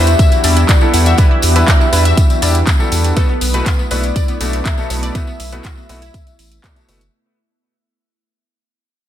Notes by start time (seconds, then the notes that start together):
Already playing: E2 E3 B3 D4 F#4 G4 E5
0.07 E4, closed hi-hat, tambourine
0.19 E5, kick, closed hi-hat, tambourine
0.32 E4, closed hi-hat, tambourine
0.44 E2 G3 D4 E4 D5 E5, open hi-hat, tambourine
0.56 E4, closed hi-hat, tambourine
0.69 D5, kick, clap, closed hi-hat, tambourine
0.81 G3 D4 E4 A4, tambourine
0.94 E2 E4 F#5, open hi-hat, tambourine
1.06 E5, closed hi-hat, tambourine
1.18 G3 D4 E4 B4 E5, kick, closed hi-hat, tambourine
1.31 E4
1.42 E2, open hi-hat, tambourine
1.56 G3 D4 E4 B4, closed hi-hat, tambourine
1.68 D5, kick, clap, closed hi-hat, tambourine
1.80 E4, tambourine
1.93 E2 G3 D4 E4 B4, open hi-hat, tambourine
2.05 E5, closed hi-hat, tambourine
2.17 kick, closed hi-hat, tambourine
2.30 closed hi-hat, tambourine
2.42 E2 G3 D4 E4 D5, open hi-hat, tambourine
2.55 closed hi-hat, tambourine
2.67 kick, clap, closed hi-hat, tambourine
2.80 G3 D4 E4 A4, tambourine
2.92 E2, open hi-hat, tambourine
3.04 closed hi-hat, tambourine
3.16 B2 A3 E4 F#4 A4 B4, kick, closed hi-hat, tambourine
3.29 B3
3.41 B1 B3, open hi-hat, tambourine
3.54 B2 A3 E4 F#4 B4, closed hi-hat, tambourine
3.66 B3, kick, clap, closed hi-hat, tambourine
3.79 B3, tambourine
3.91 B1 B2 A3 E4 F#4 B4 D5, open hi-hat, tambourine
4.03 B3, closed hi-hat, tambourine
4.16 D5, kick, closed hi-hat, tambourine
4.28 B3, closed hi-hat, tambourine
4.41 B1 B2 A3 E4 F#4 D5, open hi-hat, tambourine
4.53 B3, closed hi-hat, tambourine
4.65 E5, kick, clap, closed hi-hat, tambourine
4.78 B2 A3 B3 E4 F#4 A4, tambourine
4.90 B1 B3 B4, open hi-hat, tambourine
5.03 D5, closed hi-hat, tambourine
5.15 B2 A3 B3 E4 F#4 B4 E5, kick, closed hi-hat, tambourine
5.27 B3, tambourine
5.40 B1, open hi-hat, tambourine
5.52 B2 A3 B3 E4 F#4 B4, closed hi-hat, tambourine
5.64 F#4, kick, clap, closed hi-hat, tambourine
5.77 B3, tambourine
5.89 B1 B2 A3 B3 E4 F#4 B4, open hi-hat, tambourine
6.02 E4, closed hi-hat, tambourine
6.14 kick, closed hi-hat, tambourine
6.27 closed hi-hat, tambourine
6.39 A1, open hi-hat, tambourine
6.51 closed hi-hat, tambourine
6.64 B2 A3 E4 F#4 D5, kick, clap, closed hi-hat, tambourine
6.76 B2 A3 E4 F#4 E5, closed hi-hat, tambourine
6.88 F#1 B2 A3 E4 F#4 B4, open hi-hat, tambourine
7.01 closed hi-hat, tambourine